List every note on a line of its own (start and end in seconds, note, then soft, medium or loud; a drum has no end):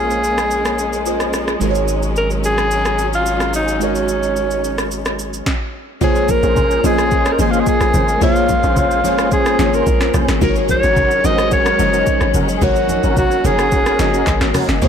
0.00 1.57 A#1 medium
0.00 5.42 G#3 medium
0.00 1.02 A#3 medium
0.00 1.57 A#3 medium
0.00 1.57 C#4 medium
0.00 1.02 F4 medium
0.00 1.03 G#4 medium
0.00 1.34 G#4 medium
0.00 1.04 C5 medium
0.00 1.63 C#5 medium
0.00 1.06 D#5 medium
0.11 shaker soft
0.24 shaker medium
0.38 cross-stick medium
0.38 shaker medium
0.51 shaker medium
0.65 cross-stick loud
0.65 shaker medium
0.79 shaker medium
0.93 shaker medium
1.06 1.61 A#3 medium
1.06 1.61 F4 medium
1.06 1.61 G#4 medium
1.06 1.62 C5 medium
1.06 1.62 D#5 medium
1.06 shaker medium
1.20 cross-stick medium
1.20 shaker soft
1.33 cross-stick medium
1.33 shaker medium
1.48 cross-stick medium
1.48 shaker medium
1.60 5.42 G#1 medium
1.60 5.43 F#3 medium
1.60 3.78 F#3 medium
1.60 3.76 G#3 medium
1.60 5.43 C#4 medium
1.60 3.77 D#4 medium
1.60 3.78 A#4 medium
1.60 shaker medium
1.64 1.69 C5 medium
1.70 3.82 C#5 medium
1.75 shaker medium
1.88 shaker medium
2.03 shaker soft
2.16 2.29 A#4 loud
2.16 shaker medium
2.31 shaker soft
2.44 3.10 G#4 loud
2.44 shaker medium
2.58 cross-stick medium
2.58 shaker medium
2.71 shaker medium
2.85 cross-stick medium
2.85 shaker medium
2.99 shaker medium
3.13 3.52 F4 loud
3.13 shaker soft
3.26 shaker medium
3.40 cross-stick medium
3.40 shaker soft
3.54 3.80 D#4 medium
3.54 shaker medium
3.68 shaker medium
3.79 5.42 G#3 medium
3.79 4.88 C#4 medium
3.79 5.43 D#4 medium
3.79 5.43 F#4 medium
3.79 5.44 A#4 medium
3.79 shaker medium
3.84 5.44 D#5 medium
3.95 shaker medium
4.08 shaker medium
4.23 shaker soft
4.36 shaker medium
4.51 shaker soft
4.64 shaker medium
4.78 cross-stick medium
4.78 shaker medium
4.91 shaker medium
5.06 cross-stick medium
5.06 shaker medium
5.19 shaker medium
5.34 shaker medium
5.46 kick loud
5.46 snare medium
6.01 6.38 A#1 loud
6.01 10.38 G#3 medium
6.01 6.68 A#3 loud
6.01 10.38 A#3 medium
6.01 14.88 C#4 medium
6.01 6.68 F4 medium
6.01 6.68 G#4 medium
6.01 6.32 G#4 loud
6.01 6.68 C5 medium
6.01 6.69 C#5 loud
6.01 kick loud
6.01 low conga medium
6.01 shaker medium
6.16 shaker medium
6.29 6.87 A#4 loud
6.29 kick loud
6.29 high conga medium
6.29 shaker medium
6.43 6.79 A#1 loud
6.43 6.81 C#4 medium
6.43 6.81 G#4 medium
6.43 6.81 C5 medium
6.43 shaker soft
6.56 kick medium
6.56 low conga medium
6.56 shaker medium
6.71 shaker soft
6.84 7.32 A#1 medium
6.84 7.28 A#3 medium
6.84 7.09 C#4 medium
6.84 7.29 F4 medium
6.84 7.09 G#4 medium
6.84 7.29 G#4 medium
6.84 7.34 G#4 loud
6.84 7.10 C5 medium
6.84 7.29 C5 medium
6.84 7.29 D#5 medium
6.84 high conga medium
6.84 shaker medium
6.98 cross-stick loud
6.98 shaker medium
7.11 7.50 C#4 medium
7.11 7.50 G#4 medium
7.11 7.50 C5 loud
7.11 kick loud
7.11 shaker medium
7.26 cross-stick loud
7.26 shaker medium
7.32 7.42 A#4 medium
7.39 7.63 G#1 medium
7.39 8.05 A#3 medium
7.39 8.06 F4 medium
7.39 8.06 G#4 medium
7.39 7.52 G#4 medium
7.39 8.06 C5 medium
7.39 8.06 D#5 medium
7.39 high conga medium
7.39 shaker medium
7.50 7.66 C#4 medium
7.50 7.61 F4 medium
7.50 7.66 G#4 medium
7.50 7.67 C5 medium
7.50 shaker medium
7.59 7.67 G#4 medium
7.66 8.19 G#4 loud
7.66 kick loud
7.66 shaker medium
7.81 7.92 A#1 medium
7.81 cross-stick medium
7.81 shaker medium
7.94 8.18 G#1 loud
7.94 8.08 C#4 medium
7.94 8.08 G#4 medium
7.94 8.08 C5 medium
7.94 high conga medium
7.94 low conga medium
7.94 shaker loud
8.09 shaker medium
8.21 8.58 A#1 loud
8.21 8.88 A#3 loud
8.21 8.88 F4 medium
8.21 8.74 F4 medium
8.21 8.88 G#4 medium
8.21 8.89 C5 loud
8.21 8.89 C#5 loud
8.21 kick loud
8.21 low conga medium
8.21 shaker medium
8.36 shaker medium
8.49 kick loud
8.49 high conga medium
8.49 shaker loud
8.63 9.06 A#1 loud
8.63 9.01 C#4 medium
8.63 9.01 G#4 medium
8.63 9.01 C5 medium
8.63 shaker soft
8.76 9.29 F4 medium
8.76 kick medium
8.76 low conga medium
8.76 shaker medium
8.91 shaker soft
9.04 9.53 G#1 loud
9.04 9.48 A#3 medium
9.04 9.29 C#4 medium
9.04 9.49 F4 medium
9.04 9.30 G#4 medium
9.04 9.49 G#4 medium
9.04 9.30 C5 medium
9.04 9.49 C5 medium
9.04 9.49 C#5 medium
9.04 high conga medium
9.04 shaker medium
9.19 cross-stick loud
9.19 shaker medium
9.31 9.70 C#4 loud
9.31 9.70 G#4 medium
9.31 9.76 G#4 loud
9.31 9.70 C5 loud
9.31 kick loud
9.31 shaker medium
9.46 cross-stick loud
9.46 shaker medium
9.59 9.83 G#1 medium
9.59 10.26 A#3 medium
9.59 10.26 F4 medium
9.59 10.26 G#4 medium
9.59 10.26 C5 medium
9.59 10.27 C#5 medium
9.59 snare medium
9.59 high conga medium
9.59 shaker medium
9.73 9.86 C#4 medium
9.73 9.87 G#4 medium
9.73 10.15 A#4 loud
9.73 9.87 C5 medium
9.73 shaker medium
9.87 10.11 A#1 loud
9.87 kick loud
9.87 shaker medium
10.01 cross-stick medium
10.01 snare medium
10.01 shaker medium
10.14 10.27 A#1 loud
10.14 10.28 C#4 medium
10.14 10.29 G#4 medium
10.14 10.29 C5 medium
10.14 cross-stick medium
10.14 high conga medium
10.14 low conga medium
10.14 shaker loud
10.29 10.40 G#1 loud
10.29 cross-stick medium
10.29 snare medium
10.29 shaker medium
10.41 10.78 G#1 loud
10.41 14.78 F#3 medium
10.41 11.08 G#3 loud
10.41 12.60 G#3 medium
10.41 11.08 D#4 loud
10.41 11.08 F#4 medium
10.41 11.09 A#4 medium
10.41 10.55 A#4 medium
10.41 11.09 C#5 loud
10.41 kick loud
10.41 low conga medium
10.41 shaker medium
10.56 shaker medium
10.69 11.27 C#5 loud
10.69 kick medium
10.69 high conga medium
10.69 shaker loud
10.83 11.19 G#1 loud
10.83 11.21 C#4 medium
10.83 11.21 F#4 medium
10.83 11.21 A#4 medium
10.83 shaker soft
10.96 kick medium
10.96 low conga medium
10.96 shaker medium
11.11 shaker soft
11.24 11.73 G#1 loud
11.24 11.69 G#3 medium
11.24 11.49 C#4 medium
11.24 11.69 D#4 medium
11.24 11.50 F#4 medium
11.24 11.69 F#4 medium
11.24 11.50 A#4 medium
11.24 11.69 A#4 medium
11.24 11.70 C5 medium
11.24 11.52 D#5 loud
11.24 high conga medium
11.24 shaker medium
11.38 cross-stick loud
11.38 shaker medium
11.51 11.90 C#4 loud
11.51 11.90 F#4 medium
11.51 11.90 A#4 loud
11.51 12.31 C#5 loud
11.51 kick loud
11.51 shaker medium
11.66 cross-stick loud
11.66 shaker medium
11.79 12.04 F#1 medium
11.79 12.46 G#3 medium
11.79 12.46 D#4 medium
11.79 12.46 F#4 medium
11.79 12.46 A#4 medium
11.79 12.47 D#5 medium
11.79 high conga medium
11.79 shaker medium
11.93 12.07 C#4 medium
11.93 12.07 F#4 medium
11.93 12.07 A#4 medium
11.93 shaker medium
12.07 kick loud
12.07 shaker medium
12.21 12.33 G#1 medium
12.21 cross-stick medium
12.21 shaker medium
12.34 12.59 F#1 medium
12.34 12.48 C#4 medium
12.34 12.49 F#4 medium
12.34 12.49 A#4 medium
12.34 high conga medium
12.34 low conga medium
12.34 shaker loud
12.49 shaker medium
12.56 12.65 G#4 medium
12.61 12.99 G#1 loud
12.61 13.28 G#3 loud
12.61 14.88 A#3 medium
12.61 13.28 D#4 medium
12.61 13.29 F#4 medium
12.61 13.18 F#4 loud
12.61 13.29 A#4 medium
12.61 13.29 C#5 loud
12.61 kick loud
12.61 low conga medium
12.61 shaker medium
12.76 shaker medium
12.89 high conga medium
12.89 shaker medium
13.03 13.40 G#1 loud
13.03 13.41 C#4 medium
13.03 13.41 F#4 medium
13.03 13.42 A#4 medium
13.03 shaker soft
13.17 13.47 F#4 loud
13.17 kick medium
13.17 low conga medium
13.17 shaker medium
13.31 shaker soft
13.44 13.93 F#1 medium
13.44 13.89 G#3 medium
13.44 13.70 C#4 medium
13.44 13.89 D#4 medium
13.44 13.70 F#4 medium
13.44 13.89 F#4 medium
13.44 14.55 G#4 loud
13.44 13.70 A#4 medium
13.44 13.90 A#4 medium
13.44 13.90 C#5 medium
13.44 high conga medium
13.44 low conga medium
13.44 shaker medium
13.59 cross-stick medium
13.59 shaker medium
13.72 14.10 C#4 medium
13.72 14.10 F#4 medium
13.72 14.11 A#4 loud
13.72 kick loud
13.72 shaker medium
13.86 cross-stick loud
13.86 shaker medium
13.99 14.24 F#1 loud
13.99 14.66 G#3 medium
13.99 14.66 D#4 medium
13.99 14.66 F#4 medium
13.99 14.67 A#4 medium
13.99 14.67 D#5 medium
13.99 snare medium
13.99 high conga medium
13.99 shaker medium
14.14 14.27 C#4 medium
14.14 14.27 F#4 medium
14.14 14.27 A#4 medium
14.14 shaker medium
14.27 14.40 G#1 loud
14.27 kick loud
14.27 clap medium
14.27 shaker medium
14.41 14.53 G#1 loud
14.41 cross-stick medium
14.41 snare medium
14.41 shaker medium
14.54 14.69 C#4 medium
14.54 14.69 F#4 medium
14.54 14.69 A#4 medium
14.54 cross-stick medium
14.54 open hi-hat medium
14.54 high conga medium
14.54 low conga medium
14.54 shaker loud
14.69 14.80 F#1 medium
14.69 snare medium
14.69 shaker medium
14.82 14.88 A#1 loud
14.82 14.88 G#3 medium
14.82 14.88 A#3 loud
14.82 14.88 F4 medium
14.82 14.88 G#4 loud
14.82 14.88 G#4 medium
14.82 14.88 C5 medium
14.82 14.88 C#5 loud
14.82 kick loud
14.82 low conga medium
14.82 shaker medium